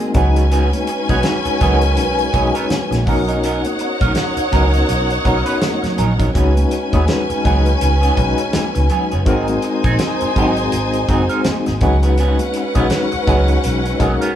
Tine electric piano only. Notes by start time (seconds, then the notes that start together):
Already playing: G#3 C4 D#4 F#4 A#4
0.14 G#3 C#4 D#4 F#4 B4
1.09 G#3 C#4 D#4 F#4 B4
1.61 G#3 C#4 D#4 F#4 A#4
2.34 G#3 C#4 D#4 F#4 C#5
3.07 B3 C#4 D#4 F#4 A#4
4.54 B3 C#4 D#4 F#4 A#4
5.25 B3 C#4 D#4 F#4 C#5
6.35 G#3 C#4 D#4 F#4 B4
6.93 G#3 C#4 D#4 F#4 B4
7.45 G#3 C#4 D#4 F#4 B4
8.17 G#3 C#4 D#4 F#4 B4
9.26 G#3 C4 D#4 F#4 A#4
10.35 G#3 C4 D#4 F#4 G#4
11.08 G#3 C4 D#4 F#4 G#4
11.82 G#3 C#4 D#4 F#4 B4
12.74 G#3 C#4 D#4 F#4 B4
13.27 G#3 C#4 D#4 F#4 B4
13.99 G#3 C#4 D#4 F#4 A#4